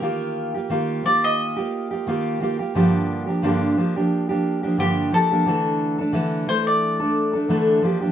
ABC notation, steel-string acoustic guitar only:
X:1
M:4/4
L:1/16
Q:"Swing 16ths" 1/4=89
K:Dm
V:1 name="Steel-string acoustic guitar"
[_E,B,FG]3 [B,FG] [E,B,FG]2 [E,B,FG]3 [B,FG]2 [B,FG] [E,B,FG]2 [E,B,FG] [B,FG] | [G,,D,F,B,DG]3 [F,B,DG] [G,,D,F,B,DG]2 [F,B,DG] [F,B,DG]2 [F,B,DG]2 [F,B,DG] [G,,D,F,B,DG]2 [F,B,DG] [F,B,DG] | [D,E,A,DA]3 [A,DA] [D,E,A,DA]2 [E,A,DA]3 [A,DA]2 [A,DA] [D,E,A,DA]2 [F,B,DG] [F,B,DG] |]